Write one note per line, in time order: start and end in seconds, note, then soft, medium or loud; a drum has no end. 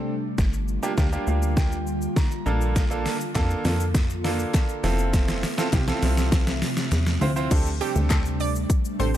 0.00 0.36 C3 medium
0.00 0.36 G3 medium
0.00 0.36 A3 medium
0.00 0.13 C4 medium
0.00 0.13 D4 medium
0.00 0.36 D4 medium
0.00 0.13 G4 medium
0.00 0.13 A4 medium
0.38 0.79 G1 loud
0.38 4.80 D3 medium
0.38 2.44 G3 medium
0.38 2.44 A#3 medium
0.38 2.44 F4 medium
0.38 kick loud
0.38 snare medium
0.38 shaker medium
0.53 shaker medium
0.68 shaker soft
0.83 0.91 A#3 loud
0.83 0.91 D4 medium
0.83 0.91 F4 medium
0.83 0.91 G4 loud
0.83 shaker medium
0.97 1.18 D2 loud
0.97 1.06 A#3 medium
0.97 1.06 D4 medium
0.97 1.06 F4 medium
0.97 1.06 G4 medium
0.97 kick loud
0.97 snare medium
0.97 shaker medium
1.12 1.76 A#3 medium
1.12 1.76 D4 medium
1.12 1.76 F4 medium
1.12 1.76 G4 medium
1.12 shaker medium
1.27 2.08 D2 medium
1.27 1.55 F5 medium
1.27 shaker medium
1.42 shaker medium
1.57 2.12 G5 medium
1.57 kick loud
1.57 snare medium
1.57 shaker medium
1.72 shaker medium
1.87 shaker soft
2.02 shaker medium
2.16 2.72 A#5 medium
2.16 kick loud
2.16 snare medium
2.16 shaker medium
2.31 shaker medium
2.46 3.07 A#1 loud
2.46 2.82 A#3 medium
2.46 4.82 A#3 medium
2.46 2.82 D4 medium
2.46 2.82 F4 medium
2.46 4.82 F4 medium
2.46 2.82 A4 loud
2.46 4.81 A4 medium
2.46 shaker soft
2.61 shaker medium
2.76 kick loud
2.76 snare medium
2.76 closed hi-hat medium
2.76 shaker medium
2.90 3.14 A#3 medium
2.90 3.15 D4 medium
2.90 3.15 F4 medium
2.90 3.15 A4 loud
2.90 shaker medium
3.06 snare medium
3.06 open hi-hat medium
3.06 shaker medium
3.21 shaker medium
3.35 3.55 F2 loud
3.35 3.83 A#3 loud
3.35 3.83 D4 medium
3.35 3.83 F4 medium
3.35 3.83 A4 loud
3.35 kick loud
3.35 snare medium
3.35 clap medium
3.35 closed hi-hat medium
3.35 shaker medium
3.50 shaker medium
3.65 4.46 F2 loud
3.65 snare medium
3.65 open hi-hat medium
3.65 shaker medium
3.80 shaker medium
3.94 kick loud
3.94 snare loud
3.94 closed hi-hat medium
3.94 shaker medium
4.10 shaker medium
4.24 4.84 A#3 medium
4.24 4.84 D4 medium
4.24 4.82 F4 medium
4.24 4.82 A4 medium
4.24 snare loud
4.24 open hi-hat medium
4.24 shaker medium
4.39 shaker medium
4.54 kick loud
4.54 snare loud
4.54 clap medium
4.54 closed hi-hat medium
4.54 shaker medium
4.69 shaker medium
4.83 5.44 F1 loud
4.83 7.48 C3 medium
4.83 7.48 F3 medium
4.83 7.48 A3 medium
4.83 5.43 C4 loud
4.83 5.43 E4 medium
4.83 5.43 F4 medium
4.83 5.43 A4 loud
4.83 7.48 E5 medium
4.83 snare medium
4.83 open hi-hat medium
4.83 shaker soft
4.99 shaker medium
5.13 kick loud
5.13 snare loud
5.13 closed hi-hat medium
5.13 shaker medium
5.28 snare loud
5.28 shaker medium
5.43 snare loud
5.43 open hi-hat medium
5.43 shaker medium
5.58 5.66 C4 loud
5.58 5.66 E4 medium
5.58 5.66 F4 medium
5.58 5.66 A4 loud
5.58 snare loud
5.58 shaker medium
5.73 5.93 C2 loud
5.73 5.81 C4 medium
5.73 5.81 E4 medium
5.73 5.81 F4 medium
5.73 5.81 G4 loud
5.73 kick loud
5.73 snare loud
5.73 clap medium
5.73 closed hi-hat medium
5.73 shaker medium
5.87 6.51 C4 loud
5.87 6.51 E4 medium
5.87 6.51 F4 medium
5.87 6.52 A4 loud
5.87 snare loud
5.87 shaker medium
6.02 6.63 C2 medium
6.02 snare loud
6.02 open hi-hat medium
6.02 shaker medium
6.17 snare loud
6.17 shaker medium
6.32 kick loud
6.32 snare loud
6.32 closed hi-hat medium
6.32 shaker medium
6.47 snare loud
6.47 shaker medium
6.62 snare loud
6.62 open hi-hat medium
6.62 shaker medium
6.77 snare loud
6.77 shaker medium
6.92 7.19 E2 medium
6.92 snare loud
6.92 clap medium
6.92 closed hi-hat medium
6.92 shaker medium
7.07 snare loud
7.07 shaker medium
7.21 7.48 D2 medium
7.21 7.29 C4 loud
7.21 7.29 E4 medium
7.21 7.29 F4 medium
7.21 7.30 C5 loud
7.21 open hi-hat medium
7.21 shaker soft
7.36 7.49 C4 loud
7.36 7.51 E4 medium
7.36 7.51 F4 medium
7.36 7.51 C5 loud
7.36 shaker medium
7.51 7.81 D2 loud
7.51 9.17 C3 medium
7.51 9.17 G3 medium
7.51 7.67 A3 medium
7.51 9.17 A3 medium
7.51 7.67 C4 medium
7.51 7.67 D4 medium
7.51 9.17 D4 medium
7.51 7.67 G4 medium
7.51 7.67 A4 loud
7.51 kick loud
7.51 closed hi-hat medium
7.51 crash loud
7.51 shaker medium
7.66 shaker medium
7.81 8.44 A3 medium
7.81 8.44 C4 medium
7.81 8.45 D4 medium
7.81 7.92 G4 medium
7.81 8.45 G4 medium
7.81 8.45 A4 medium
7.81 open hi-hat medium
7.81 shaker medium
7.96 8.66 D2 medium
7.96 shaker medium
8.10 8.34 A4 medium
8.10 kick loud
8.10 snare loud
8.10 clap loud
8.10 closed hi-hat medium
8.10 shaker medium
8.26 shaker medium
8.40 8.52 D5 medium
8.40 open hi-hat medium
8.40 shaker medium
8.55 shaker medium
8.70 kick loud
8.70 closed hi-hat medium
8.70 shaker loud
8.85 shaker medium
8.99 9.17 A1 loud
8.99 9.07 A3 medium
8.99 9.08 C4 medium
8.99 9.08 D4 medium
8.99 9.08 G4 medium
8.99 9.08 A4 medium
8.99 9.11 C5 medium
8.99 open hi-hat medium
8.99 shaker medium